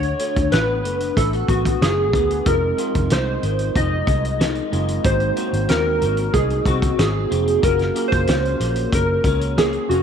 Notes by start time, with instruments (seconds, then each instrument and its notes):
Already playing: fingered electric bass D2, clean electric guitar D3, synth keys C#5
0.03 closed hi-hat
0.19 clean electric guitar A3, closed hi-hat
0.36 fingered electric bass D2, kick, closed hi-hat
0.52 fingered electric bass A1, clean electric guitar B3, synth keys B4, snare, closed hi-hat
0.84 fingered electric bass F#1, clean electric guitar A3, closed hi-hat
1.00 closed hi-hat
1.16 fingered electric bass A1, clean electric guitar E4, synth keys A4, kick, closed hi-hat
1.33 clean electric guitar F#4, closed hi-hat
1.48 fingered electric bass A1, clean electric guitar B3, synth keys F#4, kick, closed hi-hat
1.65 kick, closed hi-hat
1.81 fingered electric bass F#1, clean electric guitar A3, synth keys G#4, snare, closed hi-hat
2.13 fingered electric bass D2, clean electric guitar B3, kick, closed hi-hat
2.31 closed hi-hat
2.45 fingered electric bass F1, clean electric guitar F2, tine electric piano G#3 C4 D#4 F4, synth keys A#4, kick, closed hi-hat
2.77 clean electric guitar D#3, tine electric piano G#3 C4 D#4 F4, closed hi-hat
2.95 fingered electric bass F1, kick, closed hi-hat
3.10 fingered electric bass C2, clean electric guitar G#3, synth keys C5, snare, closed hi-hat
3.43 fingered electric bass G#1, clean electric guitar D#3, closed hi-hat
3.59 closed hi-hat
3.76 fingered electric bass F1, clean electric guitar D#4, synth keys D#5, kick, closed hi-hat
4.07 fingered electric bass C2, clean electric guitar G#3, kick, closed hi-hat
4.25 closed hi-hat
4.40 clean electric guitar D#3, snare, closed hi-hat
4.55 closed hi-hat
4.71 fingered electric bass F#1, tine electric piano G#3 C4 D#4 F4, clean electric guitar G#3, closed hi-hat
4.88 closed hi-hat
5.03 fingered electric bass G#1, clean electric guitar G#2, tine electric piano A#3 C4 D#4 F#4, synth keys C5, kick, closed hi-hat
5.20 closed hi-hat
5.36 clean electric guitar F#3, tine electric piano A#3 C4 D#4 F#4, closed hi-hat
5.53 fingered electric bass G#1, closed hi-hat
5.69 fingered electric bass D#2, clean electric guitar C4, synth keys A#4, snare, closed hi-hat
6.01 fingered electric bass G#1, clean electric guitar F#3, closed hi-hat
6.17 closed hi-hat
6.33 fingered electric bass C2, clean electric guitar D#4, synth keys G#4, kick, closed hi-hat
6.50 closed hi-hat
6.65 fingered electric bass C2, clean electric guitar C4, synth keys F#4, kick, closed hi-hat
6.82 kick, closed hi-hat
6.99 fingered electric bass G#1, clean electric guitar F#3, synth keys G#4, snare, closed hi-hat
7.29 fingered electric bass F1, tine electric piano A#3 C4 D#4 F#4, clean electric guitar C4, closed hi-hat
7.48 closed hi-hat
7.62 fingered electric bass F#1, clean electric guitar F#3, tine electric piano A#3 C#4 F4 G#4, synth keys A#4, kick, closed hi-hat
7.79 snare, closed hi-hat
7.94 tine electric piano A#3 C#4 F4 G#4, clean electric guitar A#3, closed hi-hat
8.08 synth keys C5
8.12 fingered electric bass F#1, kick, closed hi-hat
8.27 fingered electric bass C#2, clean electric guitar C#4, snare, closed hi-hat
8.45 closed hi-hat
8.60 fingered electric bass A#1, clean electric guitar A#3, closed hi-hat
8.76 closed hi-hat
8.92 fingered electric bass F#1, synth keys A#4, kick, closed hi-hat
9.24 fingered electric bass C#2, clean electric guitar C#4, kick, closed hi-hat
9.41 closed hi-hat
9.58 clean electric guitar A#3, synth keys G#4, snare, closed hi-hat
9.73 closed hi-hat
9.89 fingered electric bass F1, tine electric piano A#3 C#4 F4 G#4, clean electric guitar C#4, synth keys F#4, closed hi-hat